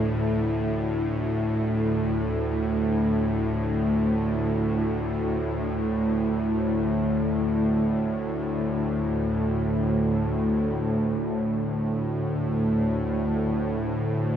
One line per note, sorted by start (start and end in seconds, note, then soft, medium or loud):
0.00 10.86 D2 medium
0.00 10.85 A2 medium
0.00 10.87 A3 medium
0.00 10.88 E4 medium
0.00 10.88 D5 medium
0.00 10.87 E5 medium
10.86 14.37 D2 medium
10.86 14.37 A2 medium
10.86 14.37 A3 medium
11.93 14.37 E4 medium
12.84 14.37 D5 medium
13.96 14.37 E5 medium